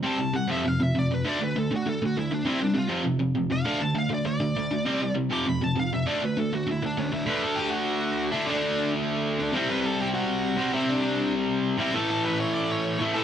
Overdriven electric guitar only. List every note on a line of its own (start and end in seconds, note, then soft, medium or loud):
0.03 0.17 C3 loud
0.03 0.18 G3 loud
0.03 0.18 C4 loud
0.18 0.33 C3 medium
0.18 0.33 G3 medium
0.34 0.48 C3 medium
0.34 0.48 G3 medium
0.48 0.63 F2 medium
0.48 0.64 C3 medium
0.48 0.64 F3 medium
0.65 0.78 F2 medium
0.65 0.79 C3 medium
0.80 0.93 F2 medium
0.80 0.94 C3 medium
0.95 1.09 F2 medium
0.95 1.09 C3 medium
1.11 1.24 F2 medium
1.11 1.24 C3 medium
1.25 1.39 D3 loud
1.25 1.39 A3 loud
1.25 1.40 D4 loud
1.40 1.54 D3 medium
1.40 1.54 A3 medium
1.56 1.69 D3 medium
1.56 1.69 A3 medium
1.71 1.84 D3 medium
1.71 1.85 A3 medium
1.86 1.99 D3 medium
1.86 2.00 A3 medium
2.02 2.15 D3 medium
2.02 2.15 A3 medium
2.17 2.30 D3 medium
2.17 2.30 A3 medium
2.31 2.44 D3 medium
2.31 2.45 A3 medium
2.45 2.59 C3 loud
2.45 2.59 G3 medium
2.45 2.60 C4 loud
2.60 2.73 C3 medium
2.60 2.74 G3 medium
2.74 2.88 C3 medium
2.74 2.89 G3 medium
2.88 3.03 F2 medium
2.88 3.03 C3 loud
2.88 3.04 F3 loud
3.04 3.18 F2 medium
3.04 3.19 C3 loud
3.20 3.34 F2 medium
3.20 3.34 C3 medium
3.35 3.49 F2 medium
3.35 3.49 C3 medium
3.50 3.64 F2 medium
3.50 3.65 C3 medium
3.65 3.80 D3 loud
3.65 3.79 A3 loud
3.65 3.80 D4 loud
3.80 3.94 D3 medium
3.80 3.94 A3 medium
3.95 4.08 D3 medium
3.95 4.09 A3 medium
4.09 4.24 D3 medium
4.09 4.24 A3 medium
4.25 4.39 D3 medium
4.25 4.39 A3 loud
4.40 4.54 D3 medium
4.40 4.54 A3 medium
4.57 4.70 D3 medium
4.57 4.70 A3 medium
4.71 4.85 D3 medium
4.71 4.85 A3 medium
4.86 5.00 C3 medium
4.86 5.01 G3 loud
4.86 5.01 C4 loud
5.01 5.14 C3 medium
5.01 5.14 G3 medium
5.15 5.30 C3 medium
5.15 5.30 G3 medium
5.30 5.45 F2 medium
5.30 5.45 C3 medium
5.30 5.46 F3 loud
5.46 5.60 F2 medium
5.46 5.60 C3 medium
5.61 5.74 F2 medium
5.61 5.75 C3 medium
5.76 5.90 F2 medium
5.76 5.90 C3 medium
5.93 6.06 F2 medium
5.93 6.06 C3 medium
6.07 6.21 D3 medium
6.07 6.22 A3 loud
6.07 6.22 D4 loud
6.22 6.36 D3 medium
6.22 6.36 A3 medium
6.37 6.51 D3 medium
6.37 6.51 A3 medium
6.53 6.66 D3 medium
6.53 6.67 A3 medium
6.67 6.81 D3 medium
6.67 6.81 A3 medium
6.83 6.96 D3 medium
6.83 6.96 A3 medium
6.97 7.11 D3 medium
6.97 7.12 A3 medium
7.12 7.25 D3 medium
7.12 7.26 A3 medium
7.26 8.31 D3 loud
7.26 8.33 A3 loud
7.26 8.30 D4 loud
8.32 8.45 D3 medium
8.32 8.48 A3 medium
8.32 8.46 D4 medium
8.46 9.52 D3 loud
8.46 9.53 A3 loud
8.46 9.53 D4 loud
9.53 10.55 C3 medium
9.53 10.58 G3 loud
9.53 10.59 C4 loud
10.57 10.71 C3 medium
10.57 10.73 G3 medium
10.57 10.74 C4 medium
10.72 11.76 C3 medium
10.72 11.79 G3 medium
10.72 11.79 C4 loud
11.78 11.92 C3 medium
11.78 11.93 G3 medium
11.78 11.94 C4 medium
11.93 12.98 A2 medium
11.93 13.01 E3 loud
11.93 13.00 A3 medium
12.99 13.12 A2 medium
12.99 13.15 E3 medium
12.99 13.15 A3 loud
13.13 13.24 A2 loud
13.13 13.24 E3 loud
13.13 13.24 A3 loud